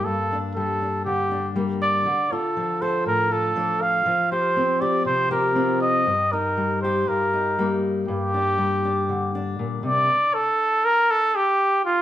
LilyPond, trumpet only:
\new Staff \with { instrumentName = "Trumpet" } { \time 4/4 \key g \minor \tempo 4 = 120 a'4 a'4 g'4 r8 d''8~ | d''8 a'4 c''8 bes'8 a'4 f''8~ | f''8 c''4 d''8 c''8 bes'4 ees''8~ | ees''8 bes'4 c''8 bes'4. r8 |
g'2. r8 d''8~ | d''8 a'4 bes'8 a'8 g'4 f'8 | }